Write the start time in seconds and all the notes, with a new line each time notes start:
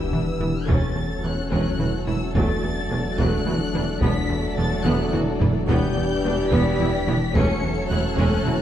Already playing: E1 E3 G3 B3 D4 E4 G4 B4 E6, sub drop
0.12 E1 E2 E3 G3 D4, taiko mid
0.40 E1 E2 E3 G3 B3, taiko mid
0.68 E1 E2 F#3 A3 C#4 F#4 A4 C#5 A6, taiko
0.96 E2
1.24 E1 E2 F#3 E4 F#6
1.51 E1 E2 F#3 C#4 F#6, taiko
1.79 E1 E2 E3 F#3 F#4, taiko mid
2.07 E1 E2 E3 F#3 E4 E6, taiko mid
2.35 E1 E2 F#3 A3 D4 D5 A6, taiko
2.63 E2
2.90 E1 E2 F#3 D4
3.18 E1 E2 F#3 A3 F#6, taiko
3.46 E1 E2 E3 F#3 F#4, taiko mid
3.74 E1 E2 E3 F#3 D4, taiko mid
4.01 E1 E2 F#3 A3 B3 F#4 A4 B6, taiko
4.29 E2, taiko rim
4.57 E1 E2 B3 D4 A6
4.85 E1 E2 B3 F#6, taiko mid
5.13 E1 E2 E3 B3 F#4, taiko mid
5.40 E1 E2 E3 B3 D4, taiko low
5.68 E1 E2 E3 G3 B3 D4 G4 B4 D5 G6, taiko
5.97 E2
6.24 E1 E2 B3 D4
6.51 E1 E2 B3 B6, taiko
6.80 E1 E2 E3 B3 E4, taiko mid
7.07 E1 E2 E3 B3 D4, taiko mid
7.34 E1 E2 F#3 A3 C#4 F#4 A4 C#5 C#7, taiko
7.63 E2
7.90 E1 E2 A3 E4 F#6
8.18 E1 E2 A3 C#4 F#6, taiko
8.45 E1 E2 E3 A3 F#4, taiko mid